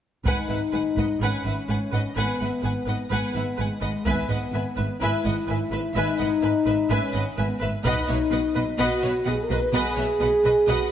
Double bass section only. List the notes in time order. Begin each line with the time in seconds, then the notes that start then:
0.26 G#1
0.49 G#1
0.73 G#1
0.97 G#1
1.22 G#1
1.45 G#1
1.70 G#1
1.94 G#1
2.17 G#1
2.40 G#1
2.64 G#1
2.88 G#1
3.12 G#1
3.36 G#1
3.59 G#1
3.82 G#1
4.06 G#1
4.29 G#1
4.53 G#1
4.77 G#1
5.02 G#1
5.26 G#1
5.49 G#1
5.72 G#1
5.95 G#1
6.20 G#1
6.43 G#1
6.67 G#1
6.90 G#1
7.14 G#1
7.38 G#1
7.62 G#1
7.85 B1
8.09 B1
8.32 B1
8.56 B1
8.79 B1
9.03 B1
9.27 B1
9.50 B1
9.74 B1
9.97 B1
10.21 B1
10.45 B1
10.68 B1